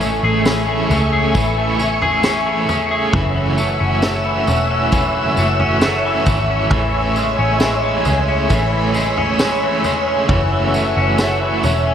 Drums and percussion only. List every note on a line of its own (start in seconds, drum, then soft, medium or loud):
0.01 tambourine medium
0.45 snare loud
0.45 tambourine medium
0.91 floor tom medium
0.91 tambourine medium
1.35 kick medium
1.35 tambourine medium
1.79 tambourine medium
2.02 floor tom medium
2.23 snare loud
2.23 tambourine medium
2.69 floor tom medium
2.69 tambourine medium
3.13 kick loud
3.13 floor tom loud
3.58 tambourine medium
4.02 snare loud
4.02 tambourine medium
4.47 floor tom medium
4.47 tambourine medium
4.92 kick medium
4.92 tambourine medium
5.37 tambourine medium
5.59 floor tom medium
5.81 snare loud
5.81 tambourine medium
6.26 kick medium
6.26 floor tom medium
6.26 tambourine medium
6.70 kick loud
6.70 floor tom loud
7.16 tambourine medium
7.60 snare loud
7.60 tambourine medium
8.05 floor tom medium
8.05 tambourine medium
8.50 kick medium
8.50 tambourine medium
8.94 tambourine medium
9.17 floor tom medium
9.39 snare loud
9.39 tambourine medium
9.84 floor tom medium
9.84 tambourine medium
10.29 kick loud
10.29 floor tom loud
10.74 tambourine medium
11.18 snare loud
11.18 tambourine medium
11.63 floor tom medium
11.63 tambourine medium